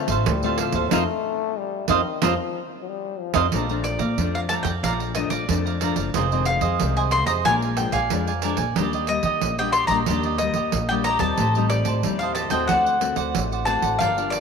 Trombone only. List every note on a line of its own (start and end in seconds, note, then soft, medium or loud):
0.00 0.29 A3 medium
0.27 0.60 G3 loud
0.59 0.95 F3 medium
0.93 1.60 A3 loud
1.58 1.89 G3 medium
1.90 2.25 D#3 medium
2.24 2.62 F3 medium
2.82 2.90 F#3 medium
2.88 3.21 G3 medium
3.20 3.53 F3 medium